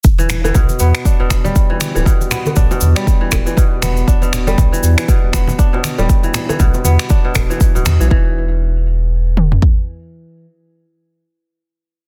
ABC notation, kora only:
X:1
M:4/4
L:1/16
Q:"Swing 16ths" 1/4=119
K:Em
V:1 name="Kora" clef=bass
z E, z E, B,, z B, z D B,, z G, z E, z E, | B,, z B, z D B,, z G, z E, z E, B,, z B, z | D B,, z G, z E, z E, B,, z B, z D B,, z G, | z E, z E, B,, z B, z D B,, z E, z B,, z E, |
E,2 z12 z2 | z16 |]